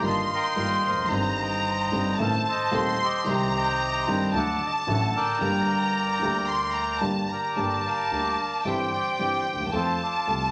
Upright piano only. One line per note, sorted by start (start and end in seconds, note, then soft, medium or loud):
0.02 0.26 G1 medium
0.02 0.26 G2 medium
0.02 0.26 D#3 medium
0.02 0.26 G3 medium
0.02 0.26 A#3 medium
0.02 0.26 F4 medium
0.56 0.80 G1 medium
0.56 0.80 G2 medium
0.56 0.80 D#3 medium
0.56 0.80 G3 medium
0.56 0.80 A#3 medium
0.56 0.80 F4 medium
0.91 0.98 E2 soft
0.97 1.05 F2 medium
1.04 1.11 F#2 medium
1.09 1.88 G1 medium
1.09 1.88 G2 medium
1.09 1.87 D#3 medium
1.09 1.88 G3 medium
1.09 1.88 C4 medium
1.13 1.89 D#4 medium
1.91 2.15 G1 medium
1.91 2.15 G2 medium
1.91 2.15 D3 medium
1.91 2.15 G3 medium
1.91 2.15 C4 medium
1.91 2.15 D#4 medium
2.18 2.41 A1 medium
2.18 2.41 A2 medium
2.18 2.41 D#3 medium
2.18 2.41 A3 medium
2.18 2.41 C4 medium
2.18 2.42 A4 medium
2.71 2.95 D#1 medium
2.71 2.95 D#2 medium
2.71 2.95 D#3 medium
2.71 2.95 A3 medium
2.71 2.95 C4 medium
2.71 2.95 A4 medium
3.25 4.03 C2 medium
3.25 4.03 C3 medium
3.25 4.02 D#3 medium
3.25 4.03 G3 medium
3.25 4.03 C4 medium
3.29 4.04 G4 medium
4.08 4.30 G1 medium
4.08 4.30 G2 medium
4.08 4.30 D#3 medium
4.08 4.30 G3 medium
4.08 4.30 C4 medium
4.08 4.30 G4 medium
4.34 4.57 D2 medium
4.34 4.57 D3 medium
4.34 4.57 F#3 medium
4.34 4.57 A3 medium
4.34 4.57 F#4 medium
4.87 5.10 A1 medium
4.87 5.10 A2 medium
4.87 5.10 D3 medium
4.87 5.10 F#3 medium
4.87 5.10 A3 medium
4.87 5.10 F#4 medium
5.39 6.18 G1 medium
5.39 6.18 G2 medium
5.39 6.17 D3 medium
5.39 6.18 G3 medium
5.39 6.18 A#3 medium
5.39 6.19 G4 medium
6.21 6.99 D2 medium
6.21 6.99 D3 medium
6.21 6.99 G3 medium
6.21 7.00 A#3 medium
6.21 7.00 G4 medium
7.01 7.25 G1 medium
7.01 7.25 G2 medium
7.01 7.25 D3 medium
7.01 7.25 G3 medium
7.01 7.25 A#3 medium
7.01 7.25 G4 medium
7.56 7.80 G1 medium
7.56 7.80 G2 medium
7.56 7.80 D3 medium
7.56 7.80 G3 medium
7.56 7.80 A#3 medium
7.56 7.80 G4 medium
8.11 8.35 D2 medium
8.11 8.34 D3 soft
8.11 8.34 G3 soft
8.11 8.34 A#3 soft
8.11 8.35 G4 soft
8.65 8.88 G1 medium
8.65 8.88 G2 medium
8.65 8.88 E3 medium
8.65 8.88 G3 medium
8.65 8.88 C4 medium
8.65 8.88 G4 medium
9.19 9.42 G1 soft
9.19 9.42 G2 medium
9.19 9.42 E3 soft
9.19 9.42 G3 soft
9.19 9.42 C4 soft
9.19 9.42 G4 soft
9.53 9.60 D2 soft
9.60 9.67 D#2 medium
9.67 9.73 E2 medium
9.73 9.96 F2 medium
9.73 9.96 F3 medium
9.73 9.96 A3 medium
9.73 9.96 C4 medium
9.73 9.96 A4 medium
10.27 10.50 C2 medium
10.27 10.50 C3 medium
10.27 10.50 F3 soft
10.27 10.50 A3 soft
10.27 10.50 C4 soft
10.27 10.50 A4 soft